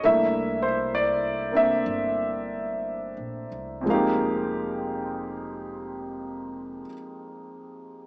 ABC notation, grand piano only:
X:1
M:4/4
L:1/8
Q:"Swing" 1/4=57
K:Cphr
V:1 name="Grand piano"
=e c =d e4 z | f8 |]
V:2 name="Grand piano"
[=A,B,=D=E]3 [B,CD]4- [B,CD] | [F,,F,A,B,EG]8 |]